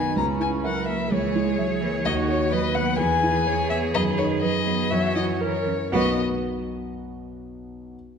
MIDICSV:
0, 0, Header, 1, 6, 480
1, 0, Start_track
1, 0, Key_signature, 5, "major"
1, 0, Tempo, 472069
1, 176, Time_signature, 4, 2, 24, 8
1, 4496, Tempo, 501253
1, 8099, End_track
2, 0, Start_track
2, 0, Title_t, "Violin"
2, 0, Program_c, 0, 40
2, 0, Note_on_c, 0, 80, 67
2, 167, Note_off_c, 0, 80, 0
2, 173, Note_on_c, 0, 82, 80
2, 254, Note_off_c, 0, 82, 0
2, 418, Note_on_c, 0, 80, 70
2, 499, Note_off_c, 0, 80, 0
2, 660, Note_on_c, 0, 78, 65
2, 894, Note_off_c, 0, 78, 0
2, 901, Note_on_c, 0, 76, 66
2, 1149, Note_on_c, 0, 73, 62
2, 1164, Note_off_c, 0, 76, 0
2, 1856, Note_off_c, 0, 73, 0
2, 2085, Note_on_c, 0, 75, 88
2, 2167, Note_off_c, 0, 75, 0
2, 2324, Note_on_c, 0, 73, 79
2, 2567, Note_on_c, 0, 75, 81
2, 2582, Note_off_c, 0, 73, 0
2, 2798, Note_on_c, 0, 78, 91
2, 2813, Note_off_c, 0, 75, 0
2, 3035, Note_off_c, 0, 78, 0
2, 3041, Note_on_c, 0, 80, 89
2, 3750, Note_off_c, 0, 80, 0
2, 3760, Note_on_c, 0, 76, 70
2, 3842, Note_off_c, 0, 76, 0
2, 4011, Note_on_c, 0, 75, 88
2, 4092, Note_off_c, 0, 75, 0
2, 4245, Note_on_c, 0, 73, 76
2, 4327, Note_off_c, 0, 73, 0
2, 4479, Note_on_c, 0, 75, 81
2, 4961, Note_on_c, 0, 76, 85
2, 4976, Note_off_c, 0, 75, 0
2, 5197, Note_off_c, 0, 76, 0
2, 5203, Note_on_c, 0, 75, 71
2, 5280, Note_off_c, 0, 75, 0
2, 5452, Note_on_c, 0, 73, 57
2, 5931, Note_off_c, 0, 73, 0
2, 5938, Note_on_c, 0, 75, 75
2, 6208, Note_off_c, 0, 75, 0
2, 8099, End_track
3, 0, Start_track
3, 0, Title_t, "Violin"
3, 0, Program_c, 1, 40
3, 0, Note_on_c, 1, 71, 48
3, 1135, Note_on_c, 1, 73, 60
3, 1151, Note_off_c, 1, 71, 0
3, 2564, Note_on_c, 1, 71, 54
3, 2579, Note_off_c, 1, 73, 0
3, 3031, Note_off_c, 1, 71, 0
3, 3037, Note_on_c, 1, 71, 61
3, 3522, Note_on_c, 1, 73, 58
3, 3538, Note_off_c, 1, 71, 0
3, 4003, Note_on_c, 1, 71, 60
3, 4018, Note_off_c, 1, 73, 0
3, 4486, Note_off_c, 1, 71, 0
3, 4492, Note_on_c, 1, 71, 52
3, 4971, Note_on_c, 1, 73, 56
3, 4985, Note_off_c, 1, 71, 0
3, 5441, Note_on_c, 1, 70, 47
3, 5456, Note_off_c, 1, 73, 0
3, 5729, Note_off_c, 1, 70, 0
3, 5930, Note_on_c, 1, 71, 57
3, 6204, Note_off_c, 1, 71, 0
3, 8099, End_track
4, 0, Start_track
4, 0, Title_t, "Viola"
4, 0, Program_c, 2, 41
4, 0, Note_on_c, 2, 63, 54
4, 166, Note_off_c, 2, 63, 0
4, 178, Note_on_c, 2, 61, 57
4, 655, Note_on_c, 2, 70, 58
4, 670, Note_off_c, 2, 61, 0
4, 1123, Note_off_c, 2, 70, 0
4, 1129, Note_on_c, 2, 68, 58
4, 2081, Note_on_c, 2, 66, 72
4, 2096, Note_off_c, 2, 68, 0
4, 2548, Note_off_c, 2, 66, 0
4, 2555, Note_on_c, 2, 71, 65
4, 3035, Note_on_c, 2, 68, 74
4, 3050, Note_off_c, 2, 71, 0
4, 4961, Note_on_c, 2, 66, 59
4, 4976, Note_off_c, 2, 68, 0
4, 5441, Note_on_c, 2, 70, 61
4, 5455, Note_off_c, 2, 66, 0
4, 5690, Note_off_c, 2, 70, 0
4, 5933, Note_on_c, 2, 66, 59
4, 6205, Note_off_c, 2, 66, 0
4, 8099, End_track
5, 0, Start_track
5, 0, Title_t, "Grand piano"
5, 0, Program_c, 3, 0
5, 0, Control_c, 3, 64, 127
5, 0, Note_on_c, 3, 35, 46
5, 0, Note_on_c, 3, 42, 36
5, 0, Note_on_c, 3, 59, 35
5, 0, Note_on_c, 3, 66, 40
5, 0, Note_on_c, 3, 75, 44
5, 166, Note_on_c, 3, 37, 51
5, 175, Note_off_c, 3, 59, 0
5, 196, Note_off_c, 3, 35, 0
5, 196, Control_c, 3, 64, 0
5, 200, Note_off_c, 3, 66, 0
5, 200, Note_off_c, 3, 75, 0
5, 203, Note_off_c, 3, 42, 0
5, 389, Control_c, 3, 64, 127
5, 404, Note_on_c, 3, 64, 43
5, 646, Note_on_c, 3, 76, 41
5, 795, Note_off_c, 3, 64, 0
5, 889, Note_on_c, 3, 58, 37
5, 1035, Note_off_c, 3, 76, 0
5, 1102, Note_off_c, 3, 37, 0
5, 1135, Note_on_c, 3, 37, 42
5, 1275, Note_off_c, 3, 58, 0
5, 1376, Note_on_c, 3, 64, 44
5, 1610, Note_on_c, 3, 76, 47
5, 1756, Note_off_c, 3, 64, 0
5, 1843, Note_on_c, 3, 58, 40
5, 1991, Note_off_c, 3, 76, 0
5, 2058, Note_off_c, 3, 37, 0
5, 2082, Note_on_c, 3, 39, 61
5, 2084, Note_off_c, 3, 58, 0
5, 2107, Control_c, 3, 64, 0
5, 2270, Control_c, 3, 64, 127
5, 2325, Note_on_c, 3, 66, 46
5, 2569, Note_on_c, 3, 71, 45
5, 2706, Note_off_c, 3, 66, 0
5, 2808, Note_on_c, 3, 59, 45
5, 2949, Note_off_c, 3, 71, 0
5, 3010, Note_off_c, 3, 39, 0
5, 3045, Note_off_c, 3, 59, 0
5, 3047, Note_on_c, 3, 40, 52
5, 3062, Control_c, 3, 64, 0
5, 3237, Control_c, 3, 64, 127
5, 3287, Note_on_c, 3, 64, 48
5, 3528, Note_on_c, 3, 71, 47
5, 3671, Note_off_c, 3, 64, 0
5, 3774, Note_on_c, 3, 59, 43
5, 3913, Note_off_c, 3, 71, 0
5, 3981, Note_off_c, 3, 40, 0
5, 4012, Note_off_c, 3, 59, 0
5, 4014, Note_on_c, 3, 42, 58
5, 4029, Control_c, 3, 64, 0
5, 4228, Control_c, 3, 64, 127
5, 4256, Note_on_c, 3, 63, 47
5, 4506, Note_on_c, 3, 71, 51
5, 4638, Note_off_c, 3, 63, 0
5, 4732, Note_on_c, 3, 59, 45
5, 4876, Note_off_c, 3, 71, 0
5, 4940, Note_off_c, 3, 42, 0
5, 4967, Note_off_c, 3, 59, 0
5, 4967, Note_on_c, 3, 42, 49
5, 4984, Control_c, 3, 64, 0
5, 5173, Control_c, 3, 64, 127
5, 5200, Note_on_c, 3, 64, 45
5, 5444, Note_on_c, 3, 70, 43
5, 5592, Note_off_c, 3, 64, 0
5, 5689, Note_on_c, 3, 61, 36
5, 5840, Note_off_c, 3, 70, 0
5, 5910, Note_off_c, 3, 42, 0
5, 5931, Note_on_c, 3, 78, 51
5, 5932, Note_on_c, 3, 59, 54
5, 5933, Note_on_c, 3, 35, 51
5, 5933, Note_on_c, 3, 66, 57
5, 5934, Note_on_c, 3, 47, 53
5, 5934, Note_on_c, 3, 71, 57
5, 5936, Note_off_c, 3, 61, 0
5, 5956, Control_c, 3, 64, 0
5, 6157, Control_c, 3, 64, 127
5, 6204, Note_off_c, 3, 78, 0
5, 6205, Note_off_c, 3, 35, 0
5, 6205, Note_off_c, 3, 59, 0
5, 6205, Note_off_c, 3, 66, 0
5, 6205, Note_off_c, 3, 71, 0
5, 6206, Note_off_c, 3, 47, 0
5, 7877, Control_c, 3, 64, 0
5, 8099, End_track
6, 0, Start_track
6, 0, Title_t, "Cello"
6, 0, Program_c, 4, 42
6, 0, Note_on_c, 4, 51, 46
6, 178, Note_off_c, 4, 51, 0
6, 182, Note_on_c, 4, 49, 44
6, 662, Note_on_c, 4, 54, 46
6, 677, Note_off_c, 4, 49, 0
6, 1135, Note_on_c, 4, 52, 56
6, 1151, Note_off_c, 4, 54, 0
6, 1369, Note_on_c, 4, 56, 52
6, 1385, Note_off_c, 4, 52, 0
6, 1600, Note_on_c, 4, 54, 54
6, 1616, Note_off_c, 4, 56, 0
6, 1839, Note_on_c, 4, 52, 59
6, 1855, Note_off_c, 4, 54, 0
6, 2075, Note_off_c, 4, 52, 0
6, 2081, Note_on_c, 4, 51, 53
6, 2558, Note_on_c, 4, 54, 50
6, 2574, Note_off_c, 4, 51, 0
6, 3041, Note_on_c, 4, 52, 54
6, 3056, Note_off_c, 4, 54, 0
6, 3521, Note_off_c, 4, 52, 0
6, 3531, Note_on_c, 4, 52, 53
6, 4010, Note_on_c, 4, 51, 57
6, 4025, Note_off_c, 4, 52, 0
6, 4496, Note_on_c, 4, 54, 54
6, 4511, Note_off_c, 4, 51, 0
6, 4966, Note_on_c, 4, 52, 57
6, 4981, Note_off_c, 4, 54, 0
6, 5435, Note_off_c, 4, 52, 0
6, 5441, Note_on_c, 4, 52, 46
6, 5723, Note_off_c, 4, 52, 0
6, 5932, Note_on_c, 4, 59, 61
6, 6205, Note_off_c, 4, 59, 0
6, 8099, End_track
0, 0, End_of_file